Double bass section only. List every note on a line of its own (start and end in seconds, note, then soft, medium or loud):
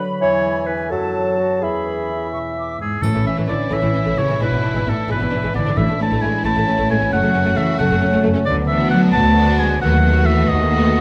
3.03 3.08 A1 soft
3.15 3.19 A1 soft
3.26 3.31 A1 soft
3.38 3.42 A1 soft
3.49 3.54 A1 soft
3.71 3.76 A1 soft
3.83 3.88 A1 soft
3.95 3.99 A1 soft
4.07 4.11 A1 soft
4.18 4.23 A1 soft
4.30 4.34 A1 soft
4.41 4.45 G#1 soft
4.52 4.56 G#1 soft
4.64 4.68 G#1 soft
4.75 4.80 G#1 soft
4.86 4.91 G#1 soft
5.09 5.14 G#1 soft
5.21 5.26 G#1 soft
5.32 5.37 G#1 soft
5.44 5.48 G#1 soft
5.55 5.60 G#1 soft
5.66 5.71 G#1 soft
5.78 5.82 A1 soft
5.89 5.93 A1 soft
6.00 6.05 A1 soft
6.11 6.16 A1 soft
6.23 6.27 A1 soft
6.45 6.50 A1 medium
6.56 6.61 A1 soft
6.67 6.72 A1 soft
6.79 6.83 A1 medium
6.91 6.95 A1 soft
7.02 7.06 A1 soft
7.13 7.17 F#1 medium
7.24 7.28 F#1 soft
7.36 7.40 F#1 soft
7.47 7.51 F#1 soft
7.58 7.62 F#1 soft
7.80 7.85 F#1 medium
7.91 7.96 F#1 soft
8.03 8.07 F#1 soft
8.14 8.19 F#1 medium
8.26 8.30 F#1 soft
8.36 8.41 F#1 soft
8.48 9.07 D2 medium
9.15 9.74 D2 medium
9.82 10.42 D#2 medium
10.49 11.01 D#2 medium